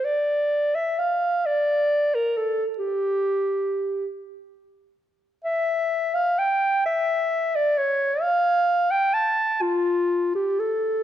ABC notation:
X:1
M:6/8
L:1/16
Q:3/8=43
K:Dm
V:1 name="Clarinet"
d3 e f2 d3 B A2 | G6 z6 | e3 f g2 e3 d ^c2 | f3 g a2 F3 G A2 |]